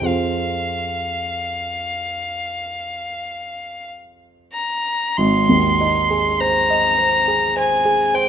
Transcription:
0.01 5.11 F2 soft
0.01 5.12 F4 soft
0.01 5.12 G#4 soft
0.01 5.13 C5 soft
0.06 3.88 F5 medium
4.53 5.19 A#5 medium
5.17 8.29 G#1 medium
5.17 6.42 C6 medium
5.49 5.98 D#2 soft
5.81 6.28 D#4 soft
6.10 6.58 G#4 soft
6.40 6.87 C5 soft
6.40 7.57 A#5 medium
6.70 7.17 D#5 soft
6.98 7.45 C5 soft
7.28 7.74 G#4 soft
7.56 8.03 C5 soft
7.56 8.16 G#5 medium
7.85 8.29 G#4 soft
8.14 8.29 C5 soft
8.14 8.29 G5 medium

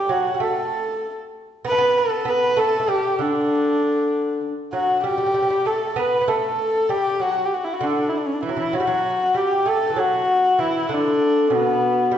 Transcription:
0.00 0.12 G4 medium
0.09 0.32 F#3 medium
0.09 0.45 F#4 medium
0.34 0.41 G3 soft
0.40 1.06 A3 medium
0.40 1.12 A4 medium
1.65 1.71 B3 medium
1.65 2.00 B4 loud
1.72 1.78 A3 medium
1.78 2.24 B3 medium
1.98 2.31 A4 medium
2.25 2.56 B3 medium
2.30 2.60 B4 loud
2.57 2.79 A3 medium
2.57 2.91 A4 medium
2.80 2.88 A3 medium
2.88 3.17 G3 medium
2.88 3.22 G4 medium
3.19 4.38 D3 medium
3.19 4.43 D4 medium
4.73 5.03 F#3 medium
4.73 5.02 F#4 medium
5.04 5.09 G3 medium
5.04 5.68 G4 medium
5.11 5.16 G3 medium
5.18 5.25 G3 medium
5.26 5.33 G3 soft
5.34 5.41 G3 medium
5.42 5.49 G3 soft
5.50 5.57 G3 medium
5.66 5.96 A3 medium
5.66 6.00 A4 medium
5.96 6.20 B3 medium
5.96 6.31 B4 medium
6.21 6.27 B3 medium
6.28 6.91 A3 medium
6.28 6.92 A4 medium
6.89 7.19 G3 medium
6.89 7.23 G4 medium
7.20 7.43 F#3 medium
7.20 7.47 F#4 medium
7.45 7.55 G4 medium
7.54 7.66 F#4 medium
7.64 7.75 E4 medium
7.74 7.85 F#4 medium
7.80 8.04 D3 medium
7.80 8.10 D4 medium
8.09 8.19 E4 medium
8.18 8.28 D4 medium
8.26 8.35 C#4 medium
8.33 8.43 D4 medium
8.43 8.50 E3 medium
8.43 8.77 E4 medium
8.49 8.57 F#3 medium
8.57 8.74 E3 medium
8.73 8.80 F#3 medium
8.73 9.39 F#4 medium
8.80 8.87 G3 medium
8.87 9.34 F#3 medium
9.34 9.67 G3 medium
9.34 9.70 G4 medium
9.66 9.91 A3 medium
9.66 10.01 A4 medium
9.90 9.97 E3 medium
9.96 10.60 F#3 medium
9.96 10.61 F#4 medium
10.59 10.89 E3 medium
10.59 10.95 E4 medium
10.89 11.53 D3 medium
10.93 11.56 D4 medium
11.50 12.14 B2 medium
11.54 12.17 B3 medium
12.11 12.18 G3 medium

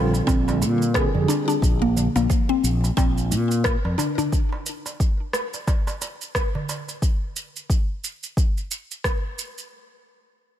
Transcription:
0.00 0.19 A#1 medium
0.00 0.94 D3 medium
0.00 1.64 G3 medium
0.00 0.26 C4 medium
0.00 0.95 C4 medium
0.00 1.64 F4 loud
0.14 darbuka ka medium
0.14 shaker soft
0.27 0.62 A#1 medium
0.27 0.93 C4 loud
0.27 kick loud
0.27 darbuka tek medium
0.27 shaker soft
0.48 darbuka ka medium
0.48 darbuka tek medium
0.48 shaker soft
0.61 1.05 A#2 medium
0.61 darbuka ka medium
0.61 shaker medium
0.82 shaker soft
0.94 1.58 D3 medium
0.94 1.59 C4 medium
0.94 1.59 G4 medium
0.94 1.59 G#4 medium
0.94 1.13 A#4 medium
0.94 kick loud
0.94 cross-stick medium
0.94 shaker soft
1.15 1.25 F2 medium
1.15 darbuka dum loud
1.28 1.47 D4 medium
1.28 darbuka tek medium
1.28 shaker medium
1.48 1.80 D4 medium
1.48 darbuka ka soft
1.48 shaker soft
1.62 2.06 A#1 loud
1.62 kick loud
1.62 shaker soft
1.82 2.14 A#3 medium
1.97 darbuka dum medium
1.97 shaker medium
2.15 2.26 A#1 medium
2.15 2.24 A#3 medium
2.15 darbuka ka medium
2.15 shaker soft
2.30 2.41 F3 medium
2.30 kick loud
2.30 shaker soft
2.49 2.96 C4 medium
2.63 2.89 A#1 medium
2.63 shaker medium
2.84 darbuka ka soft
2.84 shaker soft
2.97 3.32 A#1 medium
2.97 3.63 C4 loud
2.97 kick loud
2.97 darbuka tek medium
2.97 shaker soft
3.18 shaker soft
3.31 3.75 A#2 medium
3.31 shaker medium
3.51 shaker soft
3.64 3.83 A#4 medium
3.64 kick loud
3.64 cross-stick medium
3.64 shaker soft
3.84 3.94 F2 medium
3.84 darbuka tek medium
3.98 4.17 D4 medium
3.98 darbuka tek medium
3.98 darbuka dum medium
3.98 shaker medium
4.18 4.50 D4 medium
4.18 darbuka dum medium
4.18 shaker soft
4.32 kick loud
4.32 shaker soft
4.53 darbuka tek medium
4.66 shaker medium
4.86 darbuka ka medium
4.86 shaker soft
5.00 kick loud
5.00 shaker soft
5.33 cross-stick medium
5.33 shaker medium
5.53 darbuka ka soft
5.53 shaker soft
5.67 kick loud
5.67 darbuka tek medium
5.67 shaker soft
5.87 darbuka ka medium
5.87 darbuka tek medium
5.87 shaker soft
6.02 darbuka ka medium
6.02 shaker medium
6.21 shaker soft
6.35 kick loud
6.35 cross-stick medium
6.35 shaker soft
6.55 darbuka dum medium
6.69 darbuka tek medium
6.69 shaker medium
6.88 darbuka ka soft
6.88 shaker soft
7.02 kick loud
7.02 shaker soft
7.36 shaker medium
7.56 shaker soft
7.70 kick loud
7.70 shaker soft
8.04 shaker medium
8.23 shaker soft
8.37 kick loud
8.37 shaker soft
8.57 shaker soft
8.71 shaker medium
8.91 shaker soft
9.04 kick medium
9.04 cross-stick medium
9.04 shaker soft
9.39 shaker medium
9.58 shaker soft

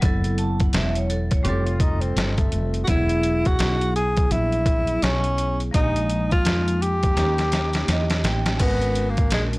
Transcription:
0.00 0.70 F#1 loud
0.00 1.41 F#3 medium
0.00 1.42 B3 medium
0.00 1.43 E4 medium
0.00 kick loud
0.00 closed hi-hat loud
0.05 0.39 A4 medium
0.24 closed hi-hat medium
0.38 0.59 A5 medium
0.38 closed hi-hat medium
0.60 0.73 F#5 medium
0.60 kick medium
0.60 closed hi-hat soft
0.73 1.42 E1 medium
0.73 0.95 E5 medium
0.73 snare loud
0.73 closed hi-hat medium
0.95 1.09 C#5 medium
0.95 closed hi-hat medium
1.10 1.30 A4 medium
1.10 closed hi-hat medium
1.31 1.65 C#5 medium
1.31 kick medium
1.31 closed hi-hat medium
1.43 2.13 F1 loud
1.43 2.84 G3 medium
1.43 2.85 C4 medium
1.43 2.86 F4 medium
1.43 1.67 G4 medium
1.43 closed hi-hat medium
1.49 2.87 A4 medium
1.65 1.82 F4 medium
1.65 closed hi-hat soft
1.80 2.03 D#4 medium
1.80 kick loud
1.80 closed hi-hat medium
2.01 2.36 C4 medium
2.01 closed hi-hat soft
2.16 2.50 G1 medium
2.16 snare loud
2.16 closed hi-hat medium
2.38 2.85 A3 medium
2.38 kick medium
2.38 closed hi-hat medium
2.52 2.86 F1 medium
2.52 closed hi-hat medium
2.74 closed hi-hat soft
2.84 5.68 F#3 medium
2.84 5.69 B3 medium
2.84 2.90 F#4 medium
2.84 closed hi-hat medium
2.88 3.56 E1 loud
2.88 3.48 E4 loud
2.88 5.70 E4 medium
2.88 5.71 G#4 medium
2.88 kick medium
3.09 closed hi-hat medium
3.23 closed hi-hat medium
3.45 3.95 F#4 loud
3.45 kick medium
3.45 closed hi-hat soft
3.59 4.28 B1 medium
3.59 snare loud
3.59 closed hi-hat medium
3.81 closed hi-hat medium
3.96 4.33 G#4 loud
3.96 closed hi-hat medium
4.17 kick medium
4.17 closed hi-hat medium
4.31 4.99 A#1 medium
4.31 5.05 E4 loud
4.31 closed hi-hat loud
4.52 closed hi-hat soft
4.66 kick medium
4.66 closed hi-hat medium
4.87 closed hi-hat medium
5.02 5.70 B1 medium
5.02 5.60 C#4 loud
5.02 snare loud
5.02 closed hi-hat medium
5.24 closed hi-hat medium
5.38 closed hi-hat medium
5.60 closed hi-hat soft
5.71 6.42 A#1 loud
5.71 7.12 F3 medium
5.71 7.13 A#3 medium
5.71 7.14 D#4 medium
5.71 6.28 D#4 loud
5.71 kick medium
5.71 closed hi-hat medium
5.77 5.83 G4 medium
5.83 7.19 G#3 medium
5.96 closed hi-hat medium
6.09 closed hi-hat medium
6.31 6.83 F4 loud
6.31 kick medium
6.31 closed hi-hat soft
6.45 7.13 F2 medium
6.45 snare loud
6.45 closed hi-hat medium
6.68 closed hi-hat medium
6.82 8.24 G4 medium
6.82 closed hi-hat medium
7.03 kick medium
7.03 closed hi-hat medium
7.14 7.85 D#2 loud
7.14 8.55 A#3 medium
7.14 8.56 C#4 medium
7.14 8.57 D#4 medium
7.14 snare medium
7.14 closed hi-hat loud
7.20 8.58 G4 medium
7.38 snare medium
7.38 closed hi-hat soft
7.52 snare medium
7.52 closed hi-hat medium
7.73 snare medium
7.73 closed hi-hat medium
7.88 8.22 E2 medium
7.88 8.22 D#5 medium
7.88 snare medium
7.88 closed hi-hat medium
8.10 snare medium
8.10 closed hi-hat medium
8.24 8.58 A1 medium
8.24 8.57 G5 medium
8.24 snare loud
8.24 closed hi-hat medium
8.46 snare loud
8.46 closed hi-hat medium
8.57 9.28 G#1 loud
8.57 9.59 G#3 medium
8.57 9.11 B3 medium
8.57 9.59 C#4 medium
8.57 9.59 F#4 medium
8.57 kick medium
8.57 closed hi-hat medium
8.57 crash medium
8.63 9.59 A#4 medium
8.82 closed hi-hat medium
8.95 closed hi-hat medium
9.10 9.32 A#3 medium
9.17 kick loud
9.17 closed hi-hat soft
9.31 9.59 A#1 medium
9.31 9.44 G#3 medium
9.31 snare loud
9.31 closed hi-hat medium
9.53 closed hi-hat medium

